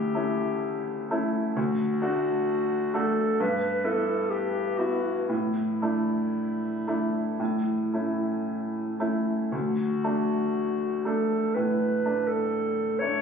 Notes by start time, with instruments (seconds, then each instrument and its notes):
Already playing: grand piano D2 A3 C#4 E4, clarinet G4
0.15 grand piano A3 C#4 E4
1.11 grand piano A3 C#4 E4
1.56 grand piano D2, clarinet F#4
2.02 grand piano A3 D4 F#4
2.94 grand piano A3 D4 F#4, clarinet A4
3.40 grand piano G2, clarinet B4
3.84 grand piano B3 E4, clarinet A4
4.30 clarinet G4
4.78 grand piano B3 E4, clarinet F#4
5.29 grand piano A2, clarinet E4
5.82 grand piano A3 D4 E4
6.88 grand piano A3 D4 E4
7.40 grand piano A2
7.94 grand piano A3 C#4 E4
9.00 grand piano A3 C#4 E4
9.52 grand piano D2, clarinet F#4
10.04 grand piano A3 D4
11.05 grand piano A3 D4, clarinet A4
11.54 grand piano A2, clarinet B4
12.06 grand piano A3 D4
12.27 clarinet A4
12.99 grand piano A3 D4, clarinet C#5